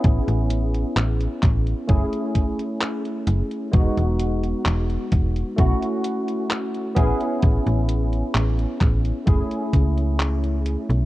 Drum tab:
HH |xxxxxxxxxxxxxxxx|xxxxxxxxxxxxxxxx|xxxxxxxxxxxxxxxx|
CP |----x-x-----x---|----x-------x---|----x-x-----x---|
BD |o-----o-o-o-----|o-----o-o-----o-|o-----o-o-o-----|